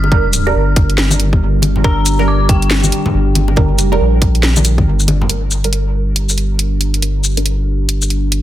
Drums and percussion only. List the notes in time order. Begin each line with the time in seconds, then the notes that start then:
0.04 high bongo
0.12 kick
0.33 closed hi-hat, shaker
0.47 high bongo
0.76 kick, closed hi-hat
0.90 closed hi-hat
0.98 snare
1.11 high bongo, high conga, shaker
1.20 closed hi-hat
1.33 kick, high conga
1.62 closed hi-hat, high bongo, high conga
1.76 low conga
1.84 kick
2.06 closed hi-hat, shaker
2.19 high bongo
2.49 kick, closed hi-hat
2.62 closed hi-hat
2.71 snare
2.84 high conga, shaker
2.92 closed hi-hat
3.06 high conga, low conga
3.35 closed hi-hat, high bongo, high conga
3.48 high bongo
3.56 kick, high conga
3.79 closed hi-hat, shaker
3.92 high bongo
4.22 kick, closed hi-hat
4.35 closed hi-hat
4.43 snare
4.56 high bongo, high conga, shaker
4.65 closed hi-hat, shaker
4.78 kick, high conga
5.00 shaker
5.08 closed hi-hat, high bongo, high conga
5.21 low conga
5.29 closed hi-hat
5.51 shaker
5.64 closed hi-hat
5.73 closed hi-hat
6.16 closed hi-hat
6.29 shaker
6.38 closed hi-hat
6.59 closed hi-hat
6.81 closed hi-hat
6.94 closed hi-hat
7.02 closed hi-hat
7.24 shaker
7.37 closed hi-hat
7.46 closed hi-hat
7.89 closed hi-hat
8.02 shaker
8.10 closed hi-hat
8.32 closed hi-hat